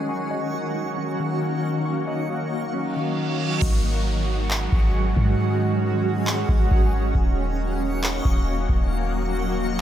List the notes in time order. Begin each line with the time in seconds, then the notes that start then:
Already playing: D#3 C#4 F#4 C#6
0.09 F#3 A#3 F#4 D#5 C#6
0.31 D#5
0.54 F#4
0.98 C#4
1.19 D#3
1.85 D#4 C#6
2.07 D#5
2.29 F#4
2.74 C#4, reverse cymbal
2.96 D#3
3.62 G#1 D#3 F#3 G#3 C#4 F#4 G#4 F#5 C#6, kick, crash, downlifter
4.51 clap
4.72 G#1, kick
5.17 G#2, kick
6.27 clap
6.49 G#1, kick
6.71 G#1, kick
7.15 D#1 F#3 A#3 F#4 D#5, kick
8.04 clap
8.25 D#1, kick
8.69 D#1, kick
8.92 C4